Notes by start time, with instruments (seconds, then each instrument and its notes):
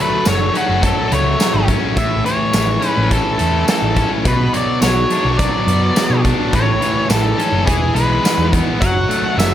Already playing: distorted electric guitar F#3 A3
0.01 lead electric guitar B4
0.25 picked electric bass F#1, distorted electric guitar F#3, lead electric guitar C#5, snare, closed hi-hat, tambourine
0.54 distorted electric guitar C#4, lead electric guitar F#4, closed hi-hat
0.69 picked electric bass F#1
0.82 distorted electric guitar F#3, lead electric guitar A4, kick, closed hi-hat
1.11 picked electric bass C#2, distorted electric guitar A3, lead electric guitar C#5, closed hi-hat
1.39 distorted electric guitar F#3, snare, closed hi-hat, tambourine
1.54 picked electric bass G#1
1.68 distorted electric guitar C#4, kick, closed hi-hat
1.96 picked electric bass A1, distorted electric guitar A2, lead electric guitar E5, kick, closed hi-hat
2.25 distorted electric guitar E3, lead electric guitar C#5, closed hi-hat
2.52 picked electric bass A1, distorted electric guitar E3, snare, closed hi-hat, tambourine
2.81 distorted electric guitar C#4, closed hi-hat
2.90 lead electric guitar B4
2.98 picked electric bass A1
3.09 distorted electric guitar E3, lead electric guitar A4, kick, closed hi-hat
3.38 picked electric bass E2, distorted electric guitar A3, closed hi-hat
3.67 distorted electric guitar E3, lead electric guitar A4, snare, closed hi-hat, tambourine
3.82 picked electric bass A1
3.95 distorted electric guitar C#4, kick, closed hi-hat
4.25 picked electric bass B1, distorted electric guitar B2, lead electric guitar B4, kick, closed hi-hat
4.53 distorted electric guitar F#3, lead electric guitar D5, closed hi-hat
4.82 picked electric bass B1, distorted electric guitar F#3, lead electric guitar C#5, snare, closed hi-hat, tambourine
5.10 distorted electric guitar D4, closed hi-hat
5.25 picked electric bass B1
5.38 distorted electric guitar F#3, lead electric guitar D5, kick, closed hi-hat
5.67 picked electric bass F#2, distorted electric guitar B3, closed hi-hat
5.96 distorted electric guitar F#3, snare, closed hi-hat, tambourine
6.10 picked electric bass B2
6.25 distorted electric guitar D4, kick, closed hi-hat
6.53 picked electric bass A1, distorted electric guitar A2, lead electric guitar C#5, kick, closed hi-hat
6.80 distorted electric guitar E3, closed hi-hat
7.09 picked electric bass A1, distorted electric guitar E3, lead electric guitar A4, snare, closed hi-hat, tambourine
7.38 distorted electric guitar C#4, closed hi-hat
7.52 picked electric bass F#1
7.66 picked electric bass E1, distorted electric guitar E3, lead electric guitar G#4, kick, closed hi-hat
7.94 picked electric bass B1, distorted electric guitar G#3, lead electric guitar B4, closed hi-hat
8.23 distorted electric guitar E3, snare, closed hi-hat, tambourine
8.38 picked electric bass E2
8.52 distorted electric guitar B3, kick, closed hi-hat
8.81 picked electric bass F#1, distorted electric guitar F#3, lead electric guitar F#5, kick, closed hi-hat
9.09 distorted electric guitar A3, closed hi-hat
9.38 picked electric bass F#1, distorted electric guitar F#3, lead electric guitar E5, snare, closed hi-hat, tambourine